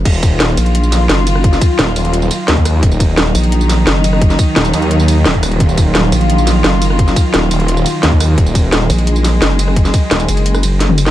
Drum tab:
CC |x---------------|----------------|----------------|----------------|
RD |--x---x---x---x-|--x---x---x---x-|--x---x---x---x-|--x---x---x---x-|
HH |x-x-x-xxx-x-x-x-|x-x-x-xxx-x-x-x-|x-x-x-xxx-x-x-x-|x-x-xxxxx-x-x-xx|
TB |-xx---x--xx---x-|-xx---x--xx---x-|-xx---x--xx---x-|-xx--xx--xx---x-|
SD |----o-----o-o--r|-o--o-------o-r-|----o-----o-o--r|-o--o-------o-r-|
T1 |----------------|----------------|----------------|----------------|
BD |o-o-------------|o-o----------o--|o-o-------------|o-o----------o--|

CC |----------------|----------------|----------------|----------------|
RD |--x---x---x---x-|--x---x---x---x-|--x---x---x---x-|--x---x---x---x-|
HH |x-x-x-xxx-x-x-x-|x-x-x-xxx-x-x-x-|x-x-x-xxx-x-x-x-|x-x-xxxxx-x-x-xx|
TB |-xx---x--xx---x-|-xx---x--xx---x-|-xx---x--xx---x-|-xx--xx--xx---x-|
SD |----o-----o-o--r|-o--o-------o-r-|----o-----o-o--r|-o--o----r--o--o|
T1 |----------------|----------------|----------------|-------------o--|
BD |o-o-------------|o-o----------o--|o-o-------------|o-o-------------|